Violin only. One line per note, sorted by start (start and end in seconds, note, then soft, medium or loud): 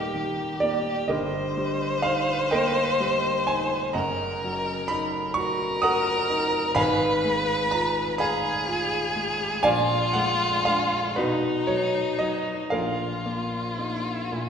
0.00 1.11 G4 medium
1.10 3.97 C5 loud
3.95 5.36 A#4 medium
5.37 6.74 A#4 loud
6.77 8.17 B4 loud
8.20 9.67 G#4 loud
9.65 11.19 F4 loud
11.17 12.74 D#4 medium
12.73 14.49 F4 medium